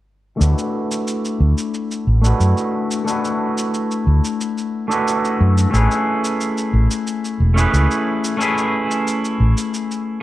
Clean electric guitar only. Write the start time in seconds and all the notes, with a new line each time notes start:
0.37 A3 D4 E4
0.41 F#4 B4
2.22 A3 D4 E4
2.26 F#4 B4
3.04 A3 D4 E4
3.09 F#4 B4
4.88 A3 D4 E4
4.92 F#4 B4
5.71 A3 C#4 E4
5.75 G#4 B4
7.54 A3 C#4 E4
7.58 G#4 B4
8.37 A3 C#4 E4
8.42 G#4 B4